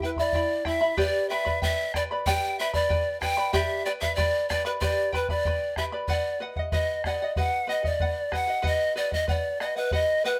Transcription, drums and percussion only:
0.00 bombo low
0.16 bombo low
0.33 bombo low
0.65 bombo rim, bombo low
0.97 bombo low
1.46 bombo low
1.62 bombo low
1.94 bombo rim, bombo low
2.26 bombo low
2.74 bombo low
2.90 bombo low
3.22 bombo rim, bombo low
3.53 bombo low
4.02 bombo low
4.18 bombo low
4.50 bombo rim, bombo low
4.81 bombo low
5.13 bombo low
5.28 bombo low
5.45 bombo low
5.76 bombo rim, bombo low
6.08 bombo low
6.56 bombo low
6.72 bombo low
7.04 bombo rim, bombo low
7.36 bombo low
7.84 bombo low
8.00 bombo low
8.32 bombo rim, bombo low
8.64 bombo low
9.12 bombo low
9.28 bombo low
9.60 bombo rim
9.91 bombo low

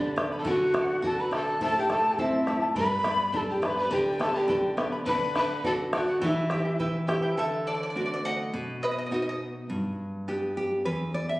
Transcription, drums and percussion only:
0.18 bombo rim, bombo low
0.45 bombo low
0.74 bombo rim, bombo low
1.04 bombo low
1.33 bombo rim, bombo low
1.61 bombo low
1.90 bombo rim, bombo low
2.18 bombo low
2.47 bombo rim, bombo low
2.75 bombo low
3.04 bombo rim, bombo low
3.34 bombo low
3.63 bombo rim, bombo low
3.92 bombo low
4.21 bombo rim, bombo low
4.49 bombo low
4.78 bombo rim, bombo low
5.07 bombo low
5.35 bombo rim, bombo low
5.64 bombo low
5.93 bombo rim, bombo low
6.22 bombo low
6.50 bombo rim, bombo low
6.80 bombo low
7.09 bombo rim, bombo low

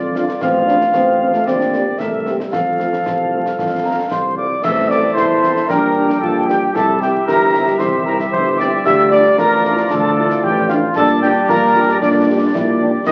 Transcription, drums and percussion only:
0.15 snare
0.29 snare
0.41 concert bass drum, snare, crash
0.68 snare
0.81 snare
0.94 concert bass drum, snare
1.34 snare
1.47 concert bass drum, snare
1.60 snare
1.73 snare
2.00 concert bass drum, snare
2.26 snare
2.40 snare
2.53 concert bass drum, snare
2.80 snare
2.93 snare
3.06 concert bass drum, snare
3.46 snare
3.59 concert bass drum, snare
4.11 concert bass drum, snare
4.64 concert bass drum, snare, crash
4.91 snare
5.17 concert bass drum, snare
5.44 snare
5.57 snare
5.70 concert bass drum, snare
6.10 snare
6.23 concert bass drum
6.50 snare
6.76 concert bass drum, snare
7.02 snare
7.28 concert bass drum, snare
7.54 snare
7.68 snare
7.80 concert bass drum, snare
8.20 snare
8.33 concert bass drum
8.60 snare
8.86 concert bass drum, snare, crash
9.12 snare
9.38 concert bass drum, snare
9.65 snare
9.77 snare
9.90 concert bass drum, snare
10.30 snare
10.43 concert bass drum
10.70 snare
10.96 concert bass drum, snare
11.23 snare
11.49 concert bass drum, snare
11.76 snare
11.89 snare
12.02 concert bass drum, snare
12.55 concert bass drum, snare
13.07 concert bass drum, snare, crash

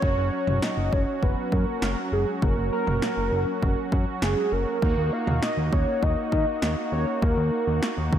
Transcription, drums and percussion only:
0.02 kick
0.47 mid tom
0.62 snare
0.93 kick
1.23 kick
1.52 kick
1.82 snare
2.42 kick
2.87 mid tom
3.02 snare
3.63 kick
3.92 kick
4.22 snare
4.82 kick
5.27 mid tom
5.42 snare
5.73 kick
6.03 kick
6.32 kick
6.62 snare
7.22 kick
7.83 snare
8.13 kick

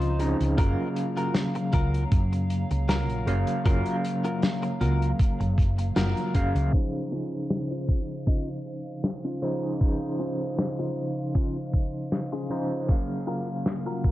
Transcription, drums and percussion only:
0.01 closed hi-hat
0.20 closed hi-hat
0.40 closed hi-hat
0.58 kick, closed hi-hat
0.96 closed hi-hat
1.17 closed hi-hat
1.35 snare, closed hi-hat
1.55 closed hi-hat
1.73 kick, closed hi-hat
1.94 closed hi-hat
2.12 kick, closed hi-hat
2.33 closed hi-hat
2.50 closed hi-hat
2.71 closed hi-hat
2.89 snare, closed hi-hat
3.10 closed hi-hat
3.27 closed hi-hat
3.47 closed hi-hat
3.66 kick, closed hi-hat
3.86 closed hi-hat
4.05 closed hi-hat
4.25 closed hi-hat
4.42 snare, closed hi-hat
4.63 closed hi-hat
4.81 closed hi-hat
5.02 closed hi-hat
5.19 kick, closed hi-hat
5.41 closed hi-hat
5.58 kick, closed hi-hat
5.78 closed hi-hat
5.96 snare, closed hi-hat
6.17 closed hi-hat
6.35 kick, closed hi-hat
6.56 closed hi-hat
6.73 kick
7.50 snare
7.89 kick
8.27 kick
9.04 snare
9.81 kick
10.59 snare
11.35 kick
11.73 kick
12.12 snare
12.89 kick
13.66 snare
14.04 kick

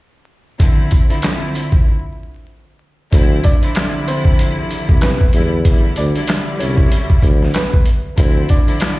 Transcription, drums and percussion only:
0.60 kick, closed hi-hat
0.91 kick, closed hi-hat
1.10 closed hi-hat
1.22 snare, clap, closed hi-hat
1.55 closed hi-hat
1.72 kick
3.12 kick, closed hi-hat
3.44 kick, closed hi-hat
3.63 closed hi-hat
3.75 snare, clap, closed hi-hat
4.08 closed hi-hat
4.25 kick
4.39 closed hi-hat
4.71 closed hi-hat
4.89 kick
5.01 snare, clap, closed hi-hat
5.21 kick
5.33 closed hi-hat
5.65 kick, closed hi-hat
5.96 closed hi-hat
6.15 closed hi-hat
6.28 snare, clap, closed hi-hat
6.60 closed hi-hat
6.78 kick
6.92 closed hi-hat
7.10 kick
7.22 kick, closed hi-hat
7.43 snare
7.54 snare, clap, closed hi-hat
7.73 kick
7.85 closed hi-hat
8.18 kick, closed hi-hat
8.49 kick, closed hi-hat
8.68 closed hi-hat
8.80 snare, clap, closed hi-hat

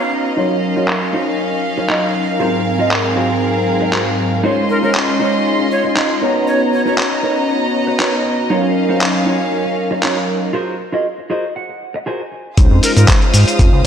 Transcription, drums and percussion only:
0.88 clap
1.90 clap
2.91 clap
3.93 clap
4.95 clap
5.97 clap
6.98 clap
8.00 clap
9.01 clap
10.03 clap
12.57 kick, closed hi-hat, shaker
12.83 open hi-hat, shaker
12.97 closed hi-hat, shaker
13.08 kick, clap, closed hi-hat, shaker
13.22 closed hi-hat
13.34 open hi-hat, shaker
13.48 closed hi-hat, shaker
13.59 kick, closed hi-hat, shaker

